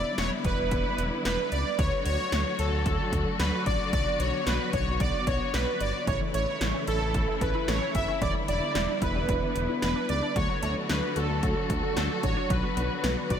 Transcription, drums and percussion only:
0.18 snare loud
0.18 closed hi-hat medium
0.45 kick medium
0.45 closed hi-hat medium
0.71 kick loud
0.71 closed hi-hat medium
0.98 closed hi-hat medium
1.25 snare loud
1.25 closed hi-hat medium
1.52 closed hi-hat medium
1.79 kick loud
1.79 closed hi-hat medium
2.06 closed hi-hat medium
2.32 snare loud
2.32 closed hi-hat medium
2.59 closed hi-hat medium
2.86 kick loud
2.86 closed hi-hat medium
3.13 kick medium
3.13 closed hi-hat medium
3.40 snare loud
3.40 closed hi-hat medium
3.66 kick medium
3.66 closed hi-hat medium
3.93 kick loud
3.93 closed hi-hat medium
4.20 closed hi-hat medium
4.47 snare loud
4.47 closed hi-hat medium
4.73 kick medium
4.73 closed hi-hat medium
5.00 kick loud
5.00 closed hi-hat medium
5.27 kick medium
5.27 closed hi-hat medium
5.54 snare loud
5.54 closed hi-hat medium
5.81 closed hi-hat medium
6.07 kick loud
6.07 closed hi-hat medium
6.34 closed hi-hat medium
6.61 snare loud
6.61 closed hi-hat medium
6.87 closed hi-hat medium
7.14 kick medium
7.14 closed hi-hat medium
7.41 kick medium
7.41 closed hi-hat medium
7.68 snare loud
7.68 closed hi-hat medium
7.95 kick medium
7.95 closed hi-hat medium
8.22 kick loud
8.22 closed hi-hat medium
8.48 closed hi-hat medium
8.75 snare loud
8.75 closed hi-hat medium
9.02 kick medium
9.02 closed hi-hat medium
9.29 kick loud
9.29 closed hi-hat medium
9.56 closed hi-hat medium
9.82 snare loud
9.82 closed hi-hat medium
10.09 closed hi-hat medium
10.36 kick loud
10.36 closed hi-hat medium
10.63 closed hi-hat medium
10.89 snare loud
10.89 closed hi-hat medium
11.16 closed hi-hat medium
11.43 kick medium
11.43 closed hi-hat medium
11.70 kick loud
11.70 closed hi-hat medium
11.97 snare loud
11.97 closed hi-hat medium
12.23 kick medium
12.23 closed hi-hat medium
12.50 kick loud
12.50 closed hi-hat medium
12.77 closed hi-hat medium
13.04 snare loud
13.04 closed hi-hat medium
13.30 kick medium
13.30 closed hi-hat medium

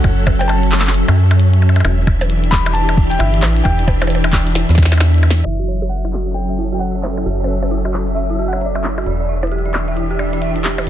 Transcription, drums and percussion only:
0.04 kick medium
0.04 closed hi-hat medium
0.04 percussion blips medium
0.27 kick loud
0.27 percussion blips medium
0.41 closed hi-hat soft
0.41 percussion blips loud
0.49 closed hi-hat medium
0.49 percussion blips medium
0.63 closed hi-hat soft
0.72 clap loud
0.79 clap medium
0.86 clap medium
0.86 closed hi-hat medium
0.94 closed hi-hat medium
1.08 closed hi-hat soft
1.08 percussion blips medium
1.31 closed hi-hat medium
1.31 percussion blips medium
1.40 closed hi-hat medium
1.54 closed hi-hat soft
1.62 percussion blips soft
1.69 percussion blips soft
1.76 closed hi-hat soft
1.76 percussion blips soft
1.80 percussion blips soft
1.85 closed hi-hat medium
1.85 percussion blips medium
2.07 kick loud
2.07 percussion blips medium
2.21 closed hi-hat medium
2.21 percussion blips loud
2.30 closed hi-hat medium
2.44 closed hi-hat soft
2.52 kick medium
2.52 clap loud
2.66 closed hi-hat medium
2.66 percussion blips medium
2.75 closed hi-hat medium
2.89 closed hi-hat soft
2.89 percussion blips medium
2.97 kick loud
3.11 closed hi-hat medium
3.20 closed hi-hat medium
3.20 percussion blips medium
3.34 closed hi-hat soft
3.43 clap loud
3.43 percussion blips loud
3.43 percussion blips medium
3.57 closed hi-hat medium
3.65 kick medium
3.65 closed hi-hat medium
3.65 percussion blips medium
3.79 closed hi-hat soft
3.88 kick loud
3.88 percussion blips medium
4.02 closed hi-hat medium
4.02 percussion blips medium
4.07 closed hi-hat medium
4.07 percussion blips medium
4.15 percussion blips medium
4.24 percussion blips medium
4.33 kick medium
4.33 clap loud
4.47 closed hi-hat medium
4.55 snare medium
4.55 closed hi-hat medium
4.69 snare soft
4.69 closed hi-hat soft
4.75 kick loud
4.75 snare soft
4.78 snare soft
4.78 percussion blips soft
4.83 snare medium
4.83 percussion blips soft
4.85 snare medium
4.85 percussion blips soft
4.92 snare medium
4.92 closed hi-hat medium
4.92 percussion blips soft
4.98 snare medium
4.98 closed hi-hat medium
4.98 percussion blips soft
5.00 percussion blips medium
5.14 closed hi-hat soft
5.23 percussion blips medium
5.30 snare loud
5.46 closed hi-hat medium
5.82 closed hi-hat soft
5.82 percussion blips medium
5.91 closed hi-hat medium
6.05 closed hi-hat soft
6.05 percussion blips medium
6.10 clap loud
6.10 closed hi-hat soft
6.18 closed hi-hat soft
6.27 closed hi-hat soft
6.36 closed hi-hat medium
6.50 closed hi-hat soft
6.72 closed hi-hat soft
6.81 closed hi-hat medium
6.95 closed hi-hat soft
7.03 clap loud
7.03 percussion blips medium
7.17 closed hi-hat soft
7.17 percussion blips medium
7.26 closed hi-hat medium
7.44 percussion blips medium
7.63 closed hi-hat soft
7.63 percussion blips medium
7.71 closed hi-hat medium
7.85 closed hi-hat soft
7.85 percussion blips medium
7.91 clap loud
7.91 closed hi-hat soft
8.08 closed hi-hat soft
8.16 closed hi-hat medium
8.30 closed hi-hat soft
8.53 closed hi-hat soft
8.53 percussion blips soft
8.61 closed hi-hat medium
8.75 closed hi-hat soft
8.75 percussion blips medium
8.84 clap loud
8.98 closed hi-hat soft
8.98 percussion blips medium
9.00 closed hi-hat soft
9.02 closed hi-hat soft
9.04 closed hi-hat soft
9.06 closed hi-hat medium
9.10 closed hi-hat soft
9.13 closed hi-hat soft
9.17 closed hi-hat soft
9.43 closed hi-hat soft
9.43 percussion blips medium
9.47 closed hi-hat soft
9.52 closed hi-hat medium
9.59 closed hi-hat soft
9.66 closed hi-hat soft
9.74 clap loud
9.74 percussion blips medium
9.88 closed hi-hat soft
9.97 closed hi-hat medium
10.19 percussion blips soft
10.33 closed hi-hat soft
10.42 closed hi-hat medium
10.56 closed hi-hat soft
10.64 clap loud
10.78 closed hi-hat soft
10.78 percussion blips medium

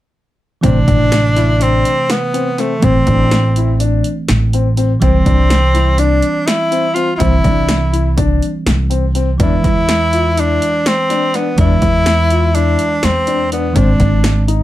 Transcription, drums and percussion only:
0.63 kick medium
0.63 closed hi-hat medium
0.88 kick medium
0.88 closed hi-hat medium
1.12 snare medium
1.12 closed hi-hat medium
1.36 snare soft
1.36 closed hi-hat medium
1.61 closed hi-hat medium
1.85 closed hi-hat medium
2.10 snare medium
2.10 closed hi-hat medium
2.34 closed hi-hat medium
2.58 snare soft
2.58 closed hi-hat soft
2.82 kick medium
2.82 closed hi-hat medium
3.07 kick medium
3.07 closed hi-hat medium
3.31 snare medium
3.31 closed hi-hat medium
3.56 closed hi-hat soft
3.80 closed hi-hat medium
4.04 closed hi-hat soft
4.29 snare medium
4.29 closed hi-hat medium
4.53 closed hi-hat soft
4.77 closed hi-hat medium
5.02 kick medium
5.02 closed hi-hat medium
5.26 kick medium
5.26 closed hi-hat medium
5.50 snare medium
5.50 closed hi-hat medium
5.75 snare soft
5.75 closed hi-hat medium
5.98 closed hi-hat medium
6.22 closed hi-hat medium
6.48 snare medium
6.48 closed hi-hat medium
6.72 closed hi-hat medium
6.96 closed hi-hat medium
7.20 kick medium
7.20 closed hi-hat medium
7.44 kick medium
7.44 closed hi-hat medium
7.69 snare medium
7.69 closed hi-hat medium
7.94 closed hi-hat soft
8.18 kick medium
8.18 closed hi-hat medium
8.42 closed hi-hat soft
8.67 snare loud
8.67 closed hi-hat medium
8.91 closed hi-hat soft
9.15 closed hi-hat medium
9.40 kick medium
9.40 closed hi-hat medium
9.64 kick medium
9.64 closed hi-hat medium
9.89 snare medium
9.89 closed hi-hat medium
10.13 closed hi-hat medium
10.37 closed hi-hat medium
10.62 closed hi-hat medium
10.86 snare medium
10.86 closed hi-hat medium
11.10 snare soft
11.10 closed hi-hat medium
11.34 snare soft
11.34 closed hi-hat medium
11.58 kick medium
11.58 closed hi-hat medium
11.82 kick medium
11.82 closed hi-hat medium
12.06 snare medium
12.06 closed hi-hat medium
12.30 closed hi-hat soft
12.55 closed hi-hat medium
12.79 closed hi-hat soft
13.03 snare medium
13.03 closed hi-hat medium
13.27 closed hi-hat soft
13.52 closed hi-hat medium
13.76 kick medium
13.76 closed hi-hat medium
14.00 kick medium
14.00 snare soft
14.00 closed hi-hat medium
14.24 snare medium
14.24 closed hi-hat medium
14.48 closed hi-hat medium

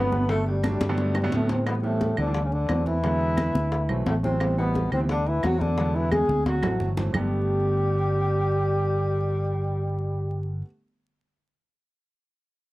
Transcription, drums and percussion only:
0.12 high bongo soft
0.12 high conga medium
0.29 high bongo medium
0.29 high conga soft
0.47 high conga soft
0.63 high bongo medium
0.63 high conga loud
0.63 claves medium
0.81 high bongo medium
0.81 high conga loud
0.98 low bongo medium
0.98 high conga soft
1.15 low bongo loud
1.15 high conga soft
1.15 claves medium
1.32 low bongo medium
1.32 high conga medium
1.49 low bongo loud
1.49 high conga medium
1.66 high bongo medium
1.66 high conga soft
1.66 claves medium
1.84 high conga soft
2.01 high bongo medium
2.01 high conga medium
2.17 high bongo soft
2.17 high conga soft
2.17 claves medium
2.34 high bongo medium
2.34 high conga soft
2.52 high bongo soft
2.52 high conga soft
2.69 high bongo medium
2.69 low bongo medium
2.69 high conga medium
2.69 claves medium
2.86 high bongo soft
2.86 high conga medium
3.04 high bongo medium
3.04 high conga soft
3.21 high conga soft
3.37 high bongo medium
3.37 high conga loud
3.37 claves medium
3.55 high bongo soft
3.55 high conga medium
3.72 high bongo medium
3.72 high conga soft
3.89 high bongo soft
3.89 high conga soft
3.89 claves medium
4.06 high bongo medium
4.06 low bongo medium
4.06 high conga medium
4.24 high bongo soft
4.24 high conga medium
4.40 high bongo medium
4.40 high conga soft
4.40 claves medium
4.59 high conga soft
4.75 high bongo medium
4.75 high conga medium
4.92 high bongo soft
4.92 high conga soft
4.92 claves medium
5.09 high bongo medium
5.09 high conga soft
5.26 high bongo soft
5.26 high conga soft
5.43 high bongo medium
5.43 low bongo medium
5.43 high conga medium
5.43 claves medium
5.61 high bongo soft
5.61 high conga medium
5.78 high bongo medium
5.78 high conga soft
5.96 high conga soft
6.12 high bongo medium
6.12 high conga medium
6.12 claves medium
6.29 high bongo soft
6.29 high conga medium
6.46 high bongo medium
6.46 high conga medium
6.63 high bongo loud
6.63 low conga loud
6.63 claves medium
6.80 low conga medium
6.97 low bongo medium
6.97 low conga medium
7.14 low bongo medium
7.14 low conga loud
7.14 claves medium

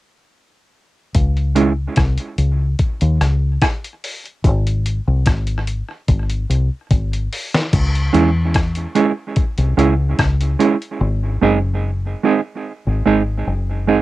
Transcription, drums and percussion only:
1.15 kick loud
1.15 closed hi-hat loud
1.37 closed hi-hat soft
1.56 closed hi-hat medium
1.96 kick loud
1.96 cross-stick loud
1.96 closed hi-hat medium
2.18 closed hi-hat medium
2.38 closed hi-hat medium
2.79 kick medium
2.79 closed hi-hat medium
3.01 closed hi-hat medium
3.21 cross-stick medium
3.21 closed hi-hat medium
3.62 kick loud
3.62 cross-stick loud
3.62 closed hi-hat medium
3.84 closed hi-hat medium
4.04 open hi-hat medium
4.25 closed hi-hat soft
4.44 kick loud
4.44 closed hi-hat medium
4.67 closed hi-hat medium
4.86 closed hi-hat medium
5.26 kick loud
5.26 cross-stick medium
5.26 closed hi-hat medium
5.47 closed hi-hat medium
5.67 closed hi-hat medium
6.08 kick loud
6.08 closed hi-hat medium
6.30 closed hi-hat medium
6.51 closed hi-hat medium
6.91 kick loud
6.91 closed hi-hat medium
7.13 closed hi-hat soft
7.32 open hi-hat medium
7.54 snare medium
7.54 closed hi-hat soft
7.73 kick loud
7.73 closed hi-hat loud
7.73 crash loud
7.95 closed hi-hat medium
8.14 closed hi-hat medium
8.54 kick loud
8.54 cross-stick loud
8.54 closed hi-hat medium
8.75 closed hi-hat medium
8.96 closed hi-hat medium
9.36 kick loud
9.36 closed hi-hat medium
9.58 closed hi-hat medium
9.79 closed hi-hat medium
10.19 kick loud
10.19 cross-stick loud
10.19 closed hi-hat medium
10.41 closed hi-hat medium
10.60 closed hi-hat medium
10.82 closed hi-hat soft

